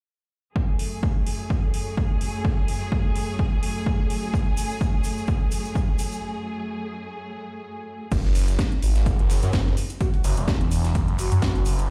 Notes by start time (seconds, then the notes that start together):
0.56 F#2 F#3 A3 G#4, kick
0.79 open hi-hat
1.03 kick
1.27 open hi-hat
1.50 kick
1.74 open hi-hat
1.97 kick
2.21 open hi-hat
2.45 kick
2.68 open hi-hat
2.92 kick
3.16 open hi-hat
3.39 kick
3.63 open hi-hat
3.86 kick
4.10 open hi-hat
4.34 kick, shaker
4.57 open hi-hat, shaker
4.71 shaker
4.81 kick, shaker
5.04 open hi-hat, shaker
5.18 shaker
5.27 kick, shaker
5.51 open hi-hat, shaker
5.65 shaker
5.75 kick, shaker
5.99 open hi-hat, shaker
6.12 shaker
8.12 F#1, kick, closed hi-hat, crash, shaker
8.25 F#1, snare
8.35 closed hi-hat, open hi-hat, shaker
8.48 closed hi-hat, shaker
8.59 kick, snare, closed hi-hat, shaker
8.72 closed hi-hat
8.82 G#1, closed hi-hat, open hi-hat, shaker
8.96 snare, closed hi-hat, shaker
9.06 kick, closed hi-hat, shaker
9.19 F#1, closed hi-hat
9.30 snare, closed hi-hat, open hi-hat, shaker
9.42 F#2, closed hi-hat, shaker
9.52 F#1, kick, snare, closed hi-hat, shaker
9.66 snare
9.77 closed hi-hat, open hi-hat, shaker
9.90 closed hi-hat, shaker
10.01 F#4, kick, closed hi-hat, shaker
10.14 F#4, closed hi-hat
10.24 F#1, closed hi-hat, open hi-hat, shaker
10.37 E1, closed hi-hat, shaker
10.48 kick, snare, closed hi-hat, shaker
10.61 E1, closed hi-hat
10.71 closed hi-hat, open hi-hat, shaker
10.85 snare, closed hi-hat, shaker
10.95 kick, closed hi-hat, shaker
11.08 F#1, closed hi-hat
11.19 F#4, closed hi-hat, open hi-hat, shaker
11.32 F#2, closed hi-hat, shaker
11.42 F#1, kick, snare, closed hi-hat, shaker
11.55 closed hi-hat
11.65 F#1, closed hi-hat, open hi-hat, shaker
11.79 closed hi-hat, shaker